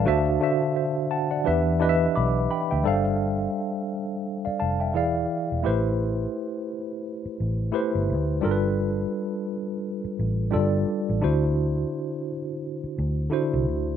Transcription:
0.00 0.24 F5 medium
0.00 0.24 A5 medium
0.04 0.37 D2 medium
0.04 0.33 D3 medium
0.04 0.33 D4 medium
0.04 0.34 F#4 medium
0.04 0.34 C5 medium
0.04 0.35 E5 loud
0.40 1.45 D3 medium
0.40 1.44 D4 medium
0.40 1.46 F#4 medium
0.40 0.75 C5 medium
0.40 0.75 E5 medium
0.76 1.09 C5 soft
0.76 1.09 E5 medium
1.11 1.30 F#5 medium
1.11 1.30 A5 medium
1.31 1.64 D5 medium
1.31 1.64 F#5 medium
1.44 2.07 E2 loud
1.44 1.74 E3 medium
1.44 1.74 D4 medium
1.44 1.74 G4 medium
1.44 1.75 B4 medium
1.44 1.75 E5 medium
1.79 2.62 E3 medium
1.79 2.62 D4 medium
1.79 2.62 G4 medium
1.79 2.63 B4 medium
1.79 1.89 D#5 medium
1.89 2.19 E5 loud
2.15 2.46 B1 loud
2.15 2.49 B5 medium
2.15 2.48 D6 medium
2.51 2.70 G5 medium
2.51 2.69 B5 medium
2.71 2.84 D2 medium
2.71 3.04 E5 medium
2.71 3.03 G5 medium
2.84 3.46 G1 medium
2.84 3.92 G3 medium
2.84 3.93 D4 medium
2.84 3.93 A4 medium
2.84 3.93 C5 medium
2.84 3.94 F5 loud
4.45 4.59 D5 soft
4.45 4.59 F5 medium
4.45 muted fingered electric bass stroke soft
4.60 4.97 F1 medium
4.60 4.79 F5 medium
4.60 4.78 A5 medium
4.80 5.13 E5 medium
4.80 5.13 G5 medium
4.93 5.26 E1 medium
4.93 5.50 E3 medium
4.93 5.50 E4 medium
4.93 5.51 G#4 medium
4.93 5.51 D5 medium
4.93 5.51 F5 medium
5.52 5.63 E1 medium
5.63 6.26 A1 medium
5.63 6.71 A3 medium
5.63 6.72 E4 medium
5.63 6.72 G4 medium
5.63 6.73 B4 medium
5.63 6.73 C5 medium
7.25 muted fingered electric bass stroke soft
7.40 7.69 A1 medium
7.72 8.28 A3 medium
7.72 8.29 E4 medium
7.72 8.29 G4 medium
7.72 8.29 B4 medium
7.72 8.30 C5 medium
7.95 8.11 G1 medium
8.10 8.39 D2 medium
8.41 9.04 G1 medium
8.41 9.50 G3 medium
8.41 9.50 D4 medium
8.41 9.51 F4 medium
8.41 9.51 A4 medium
8.41 8.51 A#4 medium
8.51 9.55 B4 medium
10.05 muted fingered electric bass stroke soft
10.19 10.56 A1 medium
10.51 10.83 G1 medium
10.51 11.07 G3 medium
10.51 11.08 D4 medium
10.51 11.08 F4 medium
10.51 11.09 A4 medium
10.51 11.09 D5 medium
11.09 11.21 A1 medium
11.20 12.29 D3 medium
11.20 12.30 D4 medium
11.20 12.30 E4 medium
11.20 12.31 F#4 medium
11.20 12.31 C5 medium
11.24 11.83 D2 medium
12.84 muted fingered electric bass stroke soft
12.98 13.28 D2 medium
13.30 13.86 D3 medium
13.30 13.87 D4 medium
13.30 13.87 E4 medium
13.30 13.88 F#4 medium
13.30 13.88 C5 medium
13.54 13.65 C2 medium
13.69 13.97 D2 medium

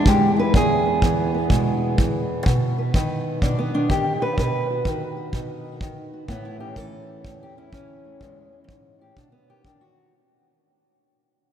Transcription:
0.00 0.53 E2 medium
0.00 0.86 B3 medium
0.06 0.52 G#3 medium
0.06 0.38 G4 medium
0.06 kick medium
0.37 0.52 E4 soft
0.37 0.55 B4 medium
0.54 2.46 E2 medium
0.54 1.99 G#4 medium
0.54 kick medium
0.86 1.03 B3 soft
1.02 1.97 E3 medium
1.02 1.34 B3 medium
1.02 kick medium
1.35 3.57 B3 soft
1.50 1.98 B2 medium
1.50 2.44 G#3 soft
1.50 kick medium
1.98 2.44 E3 medium
1.98 kick medium
2.46 2.94 B2 medium
2.46 kick medium
2.78 2.95 B4 soft
2.94 3.73 D#3 medium
2.94 4.21 B4 medium
2.94 kick medium
3.42 3.90 B2 medium
3.42 3.58 D4 medium
3.42 kick medium
3.59 3.90 B3 medium
3.74 3.88 D#3 soft
3.74 3.90 D4 medium
3.90 4.20 D#3 medium
3.90 4.22 G4 medium
3.90 kick medium
4.21 4.35 D#3 soft
4.21 4.38 B4 medium
4.38 4.85 B2 medium
4.38 5.82 B4 loud
4.38 kick medium
4.70 4.85 F#4 soft
4.85 5.81 D#3 medium
4.85 5.16 F#4 medium
4.85 kick medium
5.17 6.12 F#4 soft
5.33 5.81 B2 medium
5.33 6.28 D#4 soft
5.33 kick medium
5.81 6.27 D#3 medium
5.81 kick medium
6.13 6.27 F#4 soft
6.28 7.25 A2 medium
6.28 6.75 E3 medium
6.28 7.24 A3 medium
6.28 6.60 B3 loud
6.28 kick medium
6.45 6.60 E4 medium
6.60 7.56 C#4 soft
6.60 6.77 G4 medium
6.76 7.71 E3 medium
6.76 7.41 A4 loud
6.76 kick medium
7.24 8.20 E2 medium
7.24 8.04 A3 soft
7.24 kick medium
7.43 7.58 G4 medium
7.57 7.71 C#4 soft
7.57 8.21 E4 medium
7.72 8.19 E3 medium
7.72 9.17 C#4 medium
7.72 kick medium
8.05 8.19 A3 soft
8.21 8.67 E2 medium
8.21 9.16 E3 medium
8.21 8.51 G#3 medium
8.21 kick medium
8.52 9.15 G#3 soft
8.68 9.00 G#2 medium
8.68 kick medium
8.99 9.16 A2 medium
8.99 9.17 G4 medium
9.16 9.65 B2 medium
9.16 9.32 D4 medium
9.16 kick medium
9.32 9.65 B3 medium
9.49 9.63 D#3 soft
9.49 9.65 G4 medium
9.65 10.11 D#3 medium
9.65 9.81 D4 medium
9.65 kick medium
9.81 10.13 F#4 medium

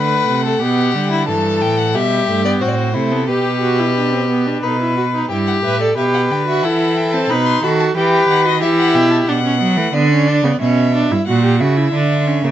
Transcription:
0.00 0.28 D3 medium
0.00 0.63 A3 medium
0.00 0.44 B4 medium
0.00 1.27 F#5 medium
0.29 0.61 C3 medium
0.45 0.61 A4 medium
0.61 0.96 B2 medium
0.61 0.94 B3 medium
0.61 1.10 G4 medium
0.95 1.30 D3 medium
0.95 1.27 G3 medium
1.11 1.28 E4 medium
1.28 1.63 G2 medium
1.28 1.96 E3 medium
1.28 1.96 A4 medium
1.28 1.63 A5 medium
1.61 1.96 A2 medium
1.61 1.80 G5 medium
1.78 1.96 F#5 medium
1.94 2.28 B2 medium
1.94 2.30 G3 medium
1.94 2.62 G4 medium
1.94 2.44 E5 medium
2.28 2.61 G2 medium
2.28 2.46 A3 medium
2.45 2.63 B3 medium
2.45 2.51 D5 medium
2.61 2.96 A2 medium
2.61 2.94 C4 medium
2.61 2.96 F#4 medium
2.61 2.70 C5 medium
2.68 2.76 D5 medium
2.75 3.13 C5 medium
2.94 3.30 C3 medium
2.94 3.13 A3 medium
2.94 3.27 E4 medium
3.12 3.28 B3 medium
3.12 3.29 A4 medium
3.28 4.63 B2 medium
3.28 4.60 G4 medium
3.28 3.61 G4 medium
3.28 4.62 B4 medium
3.63 3.81 F#4 medium
3.79 3.96 E4 medium
3.96 4.14 D4 medium
4.13 4.29 C4 medium
4.30 4.48 B3 medium
4.47 4.65 D4 medium
4.62 5.29 B2 medium
4.62 4.80 D#4 medium
4.62 4.70 B4 medium
4.62 5.29 B4 medium
4.69 4.79 A4 soft
4.77 4.97 E4 medium
4.77 5.30 B4 medium
4.97 5.04 F#4 medium
5.15 5.31 D#4 medium
5.30 5.62 G2 medium
5.30 5.62 E4 medium
5.30 5.93 G4 medium
5.30 5.37 G5 medium
5.47 5.54 F#5 medium
5.64 5.97 A2 medium
5.64 5.80 B4 medium
5.64 5.82 E5 medium
5.81 5.97 A4 medium
5.81 5.96 D5 medium
5.97 6.32 B2 medium
5.97 6.46 G4 medium
5.97 6.65 B4 medium
5.97 6.04 E5 medium
6.14 6.21 F#5 medium
6.31 6.65 D3 medium
6.31 6.37 G5 medium
6.47 6.65 F#4 medium
6.47 6.65 E5 medium
6.63 7.30 E3 medium
6.63 7.15 E4 medium
6.63 7.31 A4 medium
6.63 6.98 F#5 medium
6.97 7.15 G5 medium
7.13 7.32 C4 medium
7.13 7.31 A5 medium
7.30 7.63 B2 medium
7.30 7.65 D#4 medium
7.30 7.63 B4 medium
7.30 7.48 B5 medium
7.46 7.63 C6 medium
7.63 7.95 D#3 medium
7.63 7.96 F#4 medium
7.63 7.96 A4 medium
7.63 7.70 B5 medium
7.80 7.86 A5 medium
7.96 8.28 E3 medium
7.96 8.47 G4 loud
7.96 8.61 B4 medium
7.96 8.28 G5 medium
8.29 8.63 D#3 medium
8.29 8.45 F#5 medium
8.45 8.61 F#4 loud
8.45 8.61 D#5 medium
8.62 8.96 E3 medium
8.62 9.30 E4 loud
8.62 9.26 G4 medium
8.62 8.68 E5 medium
8.79 8.96 F#5 medium
8.95 9.27 B2 medium
8.95 9.10 G5 medium
9.11 9.17 A5 medium
9.27 9.62 B2 medium
9.27 9.44 D4 medium
9.27 9.95 F#5 medium
9.44 9.60 C#4 medium
9.61 9.78 F#3 medium
9.61 9.79 B3 medium
9.76 9.93 E3 loud
9.76 9.93 A3 medium
9.93 10.42 D3 loud
9.93 10.10 B3 medium
9.93 10.60 D5 medium
10.11 10.29 C#4 medium
10.28 10.46 D4 medium
10.43 10.50 C#3 medium
10.43 10.60 B3 medium
10.60 11.09 B2 loud
10.60 10.93 C#4 medium
10.60 11.25 E5 medium
10.94 11.13 D4 medium
11.11 11.17 G2 medium
11.11 11.27 E4 medium
11.27 11.62 A#2 loud
11.27 11.44 F#4 medium
11.27 11.61 F#5 medium
11.44 11.60 G4 medium
11.60 11.93 C#3 loud
11.60 11.78 F#4 medium
11.60 12.51 E5 medium
11.77 11.95 E4 medium
11.93 12.42 D3 medium
11.93 12.28 D4 medium
12.27 12.45 C#4 medium
12.43 12.50 C#3 medium
12.43 12.51 A#3 medium

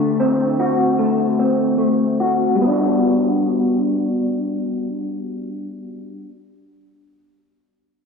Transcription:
0.00 2.55 D3 medium
0.00 0.98 A3 soft
0.20 1.38 C4 medium
0.60 2.20 F#4 medium
0.99 1.77 A3 medium
1.39 2.66 C4 soft
1.78 2.61 A3 soft
2.20 2.71 F#4 medium
2.55 6.23 G3 medium
2.61 6.29 B3 medium
2.67 6.35 D4 medium
2.71 6.39 F#4 medium

